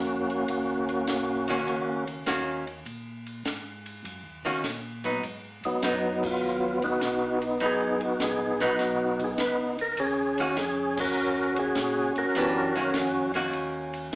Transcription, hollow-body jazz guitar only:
1.48 2.23 D#3 medium
1.48 2.23 A#3 medium
1.48 2.24 C#4 medium
1.48 2.24 F#4 medium
2.26 2.63 D#3 medium
2.26 2.63 A#3 medium
2.26 2.64 C#4 medium
2.26 2.64 F#4 medium
4.45 4.62 D#3 medium
4.45 4.62 A#3 medium
4.45 4.63 C#4 medium
4.45 4.62 F#4 medium
5.04 5.21 F#3 soft
5.04 5.22 B3 medium
5.04 5.22 D#4 medium
5.83 6.19 F#3 medium
5.83 6.20 B3 medium
5.83 6.20 D#4 medium
7.61 8.52 F#3 medium
7.61 8.52 B3 medium
7.61 8.53 D#4 medium
8.60 9.35 F#3 medium
8.60 9.35 B3 medium
8.60 9.35 D#4 medium
10.39 10.56 D#3 medium
10.39 10.56 A#3 medium
10.39 10.56 C#4 medium
10.39 10.56 F#4 medium
12.36 12.72 E3 medium
12.36 12.72 B3 medium
12.36 12.72 D4 medium
12.36 12.72 G4 medium
12.76 13.27 D#3 medium
12.76 13.27 A#3 medium
12.76 13.27 C#4 medium
12.76 13.27 F#4 medium
13.35 14.09 D#3 medium
13.35 14.09 A#3 medium
13.35 14.09 C#4 medium
13.35 14.10 F#4 medium

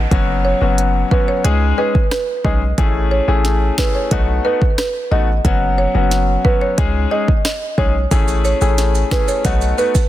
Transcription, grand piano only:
0.11 0.57 F#3 loud
0.11 0.57 B3 medium
0.11 0.57 C#4 medium
0.11 0.58 F#4 loud
0.61 1.07 F#3 medium
0.61 1.07 B3 medium
0.61 1.07 C#4 medium
0.61 1.08 F#4 medium
1.11 1.42 F#3 medium
1.11 1.42 B3 medium
1.11 1.42 C#4 medium
1.11 1.42 F#4 medium
1.44 1.75 G#3 loud
1.44 1.75 C#4 medium
1.44 1.75 D#4 medium
1.44 1.76 G#4 loud
1.78 1.94 G#3 medium
1.78 1.94 C#4 medium
1.78 1.94 D#4 medium
1.78 1.94 G#4 medium
2.44 2.60 G#3 medium
2.44 2.60 C#4 medium
2.44 2.60 D#4 medium
2.44 2.61 G#4 medium
2.78 3.24 A3 medium
2.78 3.24 C#4 medium
2.78 3.24 E4 medium
2.78 3.24 G#4 loud
3.28 3.74 A3 medium
3.28 3.74 C#4 medium
3.28 3.74 E4 medium
3.28 3.74 G#4 medium
3.78 4.09 A3 medium
3.78 4.09 C#4 medium
3.78 4.09 E4 medium
3.78 4.09 G#4 medium
4.11 4.42 A3 loud
4.11 4.42 B3 medium
4.11 4.42 D#4 medium
4.11 4.42 F#4 loud
4.45 4.60 A3 medium
4.45 4.60 B3 medium
4.45 4.61 D#4 medium
4.45 4.61 F#4 medium
5.11 5.27 A3 medium
5.11 5.27 B3 medium
5.11 5.27 D#4 medium
5.11 5.27 F#4 medium
5.45 5.91 F#3 medium
5.45 5.91 B3 medium
5.45 5.91 C#4 medium
5.45 5.91 F#4 loud
5.94 6.41 F#3 medium
5.94 6.41 B3 medium
5.94 6.41 C#4 medium
5.94 6.41 F#4 medium
6.44 6.75 F#3 medium
6.44 6.75 B3 medium
6.44 6.75 C#4 medium
6.44 6.76 F#4 medium
6.78 7.09 G#3 medium
6.78 7.09 C#4 medium
6.78 7.09 D#4 medium
6.78 7.09 G#4 loud
7.11 7.27 G#3 medium
7.11 7.27 C#4 medium
7.11 7.27 D#4 medium
7.11 7.27 G#4 medium
7.78 7.94 G#3 medium
7.78 7.94 C#4 medium
7.78 7.94 D#4 medium
7.78 7.94 G#4 medium
8.11 8.57 A3 medium
8.11 8.57 C#4 medium
8.11 8.58 E4 medium
8.11 8.58 G#4 loud
8.61 9.07 A3 medium
8.61 9.07 C#4 medium
8.61 9.08 E4 medium
8.61 9.08 G#4 medium
9.11 9.42 A3 medium
9.11 9.42 C#4 medium
9.11 9.42 E4 medium
9.11 9.42 G#4 medium
9.45 9.75 A3 loud
9.45 9.75 B3 medium
9.45 9.76 D#4 medium
9.45 9.76 F#4 loud
9.78 9.94 A3 medium
9.78 9.94 B3 medium
9.78 9.94 D#4 medium
9.78 9.94 F#4 medium

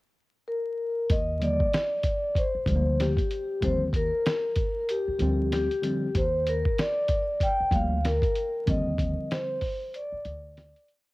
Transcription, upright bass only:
1.10 1.56 D#2 medium
2.55 muted upright bass stroke soft
2.66 3.13 D2 medium
3.62 4.09 D#2 medium
5.08 muted upright bass stroke soft
5.20 5.67 D2 medium
6.15 6.62 D#2 medium
7.60 muted upright bass stroke soft
7.71 8.18 D2 medium
8.68 9.14 D#2 medium
10.12 muted upright bass stroke soft
10.25 10.72 D2 medium

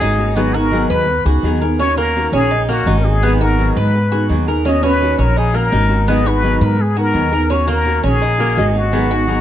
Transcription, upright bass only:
0.01 0.84 G#1 medium
0.90 1.23 D#2 loud
1.25 1.42 C#2 medium
1.43 2.27 D#2 medium
2.32 2.82 A#1 loud
2.86 3.70 G#1 medium
3.76 4.26 G#2 loud
4.30 5.13 D#2 medium
5.18 5.68 A#1 loud
5.72 6.55 G#1 medium
6.61 7.11 G#2 medium
7.14 7.98 D#2 medium
8.04 8.54 A#1 loud
8.57 9.41 G#1 medium

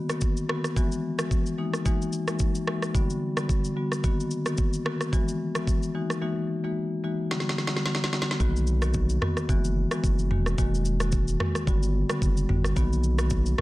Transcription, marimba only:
0.10 0.46 D#3 medium
0.10 0.46 A#3 medium
0.10 0.46 B3 medium
0.10 0.47 F#4 medium
0.49 0.75 D#3 medium
0.49 0.75 A#3 medium
0.49 0.75 B3 medium
0.49 0.75 F#4 medium
0.76 0.98 E3 medium
0.76 0.98 G#3 medium
0.76 0.98 B3 medium
0.76 0.98 F#4 medium
1.19 1.55 E3 medium
1.19 1.55 G#3 medium
1.19 1.56 B3 medium
1.19 1.56 F#4 medium
1.58 1.84 E3 medium
1.58 1.84 G#3 medium
1.58 1.84 A#3 medium
1.58 1.84 D#4 medium
1.58 1.84 F#4 medium
1.85 2.24 E3 medium
1.85 2.24 G#3 medium
1.85 2.24 A#3 medium
1.85 2.24 D#4 medium
1.85 2.24 F#4 loud
2.28 2.64 E3 medium
2.28 2.64 G#3 medium
2.28 2.65 A#3 medium
2.28 2.65 D#4 medium
2.28 2.65 F#4 medium
2.67 2.93 E3 medium
2.67 2.93 G#3 medium
2.67 2.93 A#3 medium
2.67 2.93 D#4 medium
2.67 2.93 F#4 medium
2.94 3.16 D3 medium
2.94 3.16 G3 medium
2.94 3.16 B3 medium
2.94 3.16 F#4 medium
3.37 3.73 D3 medium
3.37 3.74 G3 medium
3.37 3.74 B3 medium
3.37 3.74 F#4 medium
3.76 4.02 D3 medium
3.76 4.02 G3 medium
3.76 4.02 B3 medium
3.76 4.02 F#4 medium
4.04 4.42 D#3 medium
4.04 4.42 A#3 medium
4.04 4.43 B3 medium
4.04 4.43 F#4 loud
4.46 4.83 D#3 medium
4.46 4.83 A#3 medium
4.46 4.83 B3 medium
4.46 4.83 F#4 medium
4.85 5.11 D#3 medium
4.85 5.11 A#3 medium
4.85 5.11 B3 medium
4.85 5.11 F#4 medium
5.13 5.34 E3 medium
5.13 5.34 G#3 medium
5.13 5.34 B3 medium
5.13 5.34 F#4 medium
5.55 5.92 E3 medium
5.55 5.92 G#3 medium
5.55 5.92 B3 medium
5.55 5.92 F#4 medium
5.95 6.20 E3 medium
5.95 6.20 G#3 medium
5.95 6.20 A#3 medium
5.95 6.20 D#4 medium
5.95 6.20 F#4 medium
6.22 6.60 E3 medium
6.22 6.61 G#3 medium
6.22 6.61 A#3 medium
6.22 6.61 D#4 medium
6.22 6.61 F#4 loud
6.64 7.01 E3 medium
6.64 7.01 G#3 medium
6.64 7.01 A#3 medium
6.64 7.01 D#4 medium
6.64 7.01 F#4 medium
7.04 7.29 E3 medium
7.04 7.29 G#3 medium
7.04 7.29 A#3 medium
7.04 7.29 D#4 medium
7.04 7.29 F#4 medium
7.31 7.52 D3 medium
7.31 7.52 G3 medium
7.31 7.52 B3 medium
7.31 7.52 F#4 medium
7.73 8.10 D3 medium
7.73 8.10 G3 medium
7.73 8.10 B3 medium
7.73 8.10 F#4 medium
8.12 8.38 D3 medium
8.12 8.38 G3 medium
8.12 8.38 B3 medium
8.12 8.38 F#4 medium
8.40 8.79 D#3 medium
8.40 8.79 A#3 medium
8.40 8.79 B3 medium
8.40 8.79 F#4 loud
8.82 9.19 D#3 medium
8.82 9.19 A#3 medium
8.82 9.19 B3 medium
8.82 9.19 F#4 medium
9.22 9.47 D#3 medium
9.22 9.47 A#3 medium
9.22 9.47 B3 medium
9.22 9.47 F#4 medium
9.49 9.70 E3 medium
9.49 9.70 G#3 medium
9.49 9.70 B3 medium
9.49 9.71 F#4 loud
9.91 10.28 E3 medium
9.91 10.28 G#3 medium
9.91 10.28 B3 medium
9.91 10.28 F#4 medium
10.31 10.56 D#3 medium
10.31 10.56 G#3 medium
10.31 10.56 A#3 medium
10.31 10.57 F#4 medium
10.58 10.97 D#3 medium
10.58 10.97 G#3 medium
10.58 10.97 A#3 medium
10.58 10.97 F#4 loud
11.00 11.37 D#3 medium
11.00 11.37 G#3 medium
11.00 11.37 A#3 medium
11.00 11.37 F#4 medium
11.40 11.65 D#3 medium
11.40 11.65 G#3 medium
11.40 11.66 A#3 medium
11.40 11.66 F#4 medium
11.67 11.89 D3 medium
11.67 11.89 G3 medium
11.67 11.89 B3 medium
11.67 11.89 F#4 loud
12.10 12.46 D3 medium
12.10 12.46 G3 medium
12.10 12.46 B3 medium
12.10 12.47 F#4 medium
12.49 12.74 D3 medium
12.49 12.75 G3 medium
12.49 12.75 B3 medium
12.49 12.75 F#4 medium
12.76 13.15 D#3 medium
12.76 13.15 A#3 medium
12.76 13.15 B3 medium
12.76 13.15 F#4 loud
13.19 13.55 D#3 medium
13.19 13.55 A#3 medium
13.19 13.56 B3 medium
13.19 13.56 F#4 medium
13.58 13.61 D#3 medium
13.58 13.61 A#3 medium

